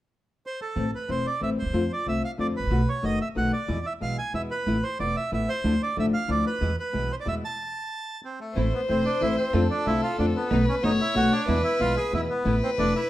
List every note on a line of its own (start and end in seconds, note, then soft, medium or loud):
0.46 0.60 C5 medium
0.61 0.91 A4 medium
0.76 0.90 A1 medium
0.76 0.85 E3 medium
0.76 0.85 A3 medium
0.76 0.85 C4 medium
0.76 0.85 E4 medium
0.95 1.10 B4 medium
1.08 1.22 E1 soft
1.08 1.25 E3 soft
1.08 1.26 A3 medium
1.08 1.26 C4 medium
1.08 1.26 E4 medium
1.08 1.26 C5 medium
1.27 1.41 D5 medium
1.41 1.55 A1 soft
1.41 1.58 E3 medium
1.41 1.58 A3 medium
1.41 1.58 C4 medium
1.41 1.59 E4 medium
1.41 1.50 E5 medium
1.59 1.65 D2 soft
1.59 1.92 C5 medium
1.66 1.69 D#2 soft
1.70 1.73 E2 medium
1.70 1.88 F2 medium
1.70 1.82 D3 medium
1.70 1.83 A3 medium
1.70 1.83 C4 medium
1.70 1.83 F4 medium
1.93 2.07 D5 medium
2.06 2.20 C2 soft
2.06 2.23 D3 soft
2.06 2.23 A3 medium
2.06 2.23 C4 medium
2.06 2.23 F4 medium
2.06 2.23 E5 medium
2.25 2.31 F5 medium
2.38 2.53 F2 soft
2.38 2.55 D3 soft
2.38 2.55 A3 soft
2.38 2.56 C4 medium
2.38 2.56 F4 medium
2.38 2.47 D5 medium
2.57 2.63 G#1 soft
2.57 2.89 B4 medium
2.63 2.66 A1 soft
2.63 2.70 A#1 medium
2.70 2.85 B1 medium
2.70 2.80 B2 medium
2.70 2.80 D#3 medium
2.70 2.80 A3 medium
2.70 2.80 B3 medium
2.70 2.80 F#4 medium
2.89 3.05 C#5 medium
3.02 3.17 F#1 soft
3.02 3.20 B2 medium
3.02 3.20 D#3 medium
3.02 3.20 A3 medium
3.02 3.20 B3 medium
3.02 3.21 F#4 medium
3.02 3.19 D#5 medium
3.21 3.28 E5 medium
3.35 3.50 B1 soft
3.35 3.52 B2 soft
3.35 3.53 D#3 medium
3.35 3.53 A3 medium
3.35 3.53 B3 medium
3.35 3.53 F#4 medium
3.35 3.52 F#5 medium
3.53 3.86 D5 medium
3.68 3.83 E2 medium
3.68 3.77 B2 medium
3.68 3.77 E3 medium
3.68 3.77 G#3 medium
3.68 3.77 B3 medium
3.68 3.78 E4 medium
3.86 3.93 E5 medium
4.00 4.15 B1 soft
4.00 4.18 B2 soft
4.00 4.18 E3 soft
4.00 4.18 G#3 medium
4.00 4.18 B3 medium
4.00 4.19 E4 medium
4.00 4.17 F5 medium
4.18 4.33 G#5 medium
4.33 4.47 E2 soft
4.33 4.51 B2 soft
4.33 4.51 E3 medium
4.33 4.51 G#3 soft
4.33 4.51 B3 soft
4.33 4.51 E4 medium
4.33 4.42 E5 medium
4.51 4.84 B4 medium
4.67 4.80 A1 medium
4.67 4.76 E3 medium
4.67 4.76 A3 medium
4.67 4.76 B3 medium
4.67 4.76 E4 medium
4.83 4.98 C5 medium
4.99 5.13 E1 medium
4.99 5.16 E3 medium
4.99 5.16 A3 medium
4.99 5.17 B3 medium
4.99 5.17 E4 medium
4.99 5.16 D5 medium
5.16 5.31 E5 medium
5.31 5.46 A1 medium
5.31 5.49 E3 medium
5.31 5.49 A3 soft
5.31 5.49 B3 medium
5.31 5.49 E4 medium
5.31 5.49 E5 medium
5.49 5.82 C5 medium
5.64 5.78 D2 medium
5.64 5.73 D3 medium
5.64 5.73 F3 medium
5.64 5.73 A3 medium
5.64 5.74 D4 medium
5.64 5.74 E4 medium
5.83 5.97 D5 medium
5.96 6.11 A1 medium
5.96 6.14 D3 medium
5.96 6.14 F3 medium
5.96 6.14 A3 medium
5.96 6.14 D4 medium
5.96 6.14 E4 medium
5.96 6.06 E5 medium
6.14 6.30 F5 medium
6.28 6.43 D2 soft
6.28 6.46 D3 soft
6.28 6.46 F3 medium
6.28 6.46 A3 medium
6.28 6.46 D4 medium
6.28 6.46 E4 medium
6.28 6.45 D5 medium
6.47 6.76 B4 medium
6.61 6.75 E2 medium
6.61 6.70 B2 medium
6.61 6.70 E3 medium
6.61 6.70 G#3 medium
6.61 6.71 B3 medium
6.61 6.71 E4 medium
6.80 7.12 B4 medium
6.93 7.08 B1 soft
6.93 7.10 B2 soft
6.93 7.11 E3 medium
6.93 7.11 G#3 medium
6.93 7.11 B3 medium
6.93 7.11 E4 medium
7.12 7.15 C5 medium
7.20 7.28 D5 medium
7.25 7.40 E2 soft
7.25 7.43 B2 medium
7.25 7.43 E3 soft
7.25 7.43 G#3 medium
7.25 7.43 B3 soft
7.25 7.43 E4 medium
7.25 7.35 E5 medium
7.45 8.21 A5 medium
8.25 8.39 C4 medium
8.41 8.74 A3 medium
8.55 8.70 A1 medium
8.55 8.65 E3 medium
8.55 8.70 A3 medium
8.55 8.65 A3 medium
8.55 8.70 C4 medium
8.55 8.65 C4 medium
8.55 8.70 E4 medium
8.55 8.65 E4 medium
8.55 9.56 C5 medium
8.74 8.81 B3 medium
8.88 9.03 E1 medium
8.88 9.06 E3 medium
8.88 9.02 A3 soft
8.88 9.06 A3 medium
8.88 9.02 C4 soft
8.88 9.06 C4 medium
8.88 9.04 C4 medium
8.88 9.02 E4 soft
8.88 9.06 E4 medium
9.05 9.22 D4 medium
9.20 9.35 A1 soft
9.20 9.38 E3 medium
9.20 9.35 A3 medium
9.20 9.38 A3 medium
9.20 9.35 C4 soft
9.20 9.38 C4 medium
9.20 9.35 E4 medium
9.20 9.38 E4 medium
9.20 9.37 E4 medium
9.37 9.67 C4 medium
9.53 9.67 F2 medium
9.53 9.62 D3 medium
9.53 9.67 A3 medium
9.53 9.62 A3 medium
9.53 9.63 C4 medium
9.53 9.67 D4 medium
9.53 9.67 F4 medium
9.53 9.63 F4 medium
9.53 10.52 A4 medium
9.70 9.87 D4 medium
9.86 10.00 C2 medium
9.86 10.03 D3 medium
9.86 9.99 A3 soft
9.86 10.03 A3 medium
9.86 10.04 C4 medium
9.86 9.99 D4 soft
9.86 10.01 E4 medium
9.86 10.00 F4 medium
9.86 10.04 F4 medium
10.03 10.17 F4 medium
10.18 10.32 F2 medium
10.18 10.35 D3 medium
10.18 10.32 A3 soft
10.18 10.35 A3 medium
10.18 10.36 C4 medium
10.18 10.32 D4 soft
10.18 10.26 D4 medium
10.18 10.32 F4 medium
10.18 10.36 F4 medium
10.36 10.65 B3 medium
10.50 10.64 B1 medium
10.50 10.60 B2 medium
10.50 10.60 D#3 medium
10.50 10.64 A3 medium
10.50 10.60 A3 medium
10.50 10.64 B3 medium
10.50 10.60 B3 medium
10.50 10.64 D#4 medium
10.50 10.60 F#4 medium
10.50 10.85 B4 medium
10.69 10.75 C#4 medium
10.82 10.97 F#1 medium
10.82 11.00 B2 medium
10.82 11.00 D#3 medium
10.82 10.96 A3 soft
10.82 11.00 A3 medium
10.82 10.96 B3 soft
10.82 11.00 B3 medium
10.82 10.97 D#4 medium
10.82 10.91 D#4 medium
10.82 11.00 F#4 medium
10.82 11.48 C#5 medium
11.01 11.15 E4 medium
11.14 11.29 B1 medium
11.14 11.32 B2 medium
11.14 11.32 D#3 medium
11.14 11.29 A3 soft
11.14 11.32 A3 medium
11.14 11.29 B3 soft
11.14 11.32 B3 medium
11.14 11.29 D#4 medium
11.14 11.32 F#4 medium
11.14 11.33 F#4 medium
11.32 11.62 D4 medium
11.47 11.62 E2 medium
11.47 11.57 B2 medium
11.47 11.57 E3 medium
11.47 11.61 G#3 medium
11.47 11.57 G#3 medium
11.47 11.61 B3 medium
11.47 11.57 B3 medium
11.47 11.61 E4 medium
11.47 11.57 E4 medium
11.47 12.25 B4 medium
11.64 11.81 E4 medium
11.79 11.94 B1 soft
11.79 11.97 B2 medium
11.79 11.97 E3 medium
11.79 11.94 G#3 soft
11.79 11.97 G#3 medium
11.79 11.94 B3 soft
11.79 11.97 B3 medium
11.79 11.94 E4 soft
11.79 11.97 E4 medium
11.79 11.95 F4 medium
11.97 12.13 G#4 medium
12.12 12.26 E2 medium
12.12 12.30 B2 medium
12.12 12.30 E3 medium
12.12 12.26 G#3 soft
12.12 12.30 G#3 medium
12.12 12.26 B3 soft
12.12 12.30 B3 medium
12.12 12.26 E4 medium
12.12 12.30 E4 medium
12.12 12.21 E4 medium
12.30 12.60 B3 medium
12.44 12.59 A1 medium
12.44 12.54 E3 medium
12.44 12.54 A3 medium
12.44 12.59 A3 medium
12.44 12.54 B3 medium
12.44 12.59 B3 medium
12.44 12.59 E4 medium
12.44 12.54 E4 medium
12.44 13.10 B4 medium
12.63 12.70 C4 medium
12.77 12.92 E1 medium
12.77 12.95 E3 medium
12.77 12.91 A3 soft
12.77 12.95 A3 medium
12.77 12.91 B3 soft
12.77 12.95 B3 medium
12.77 12.94 D4 medium
12.77 12.91 E4 medium
12.77 12.95 E4 medium
12.96 13.10 E4 medium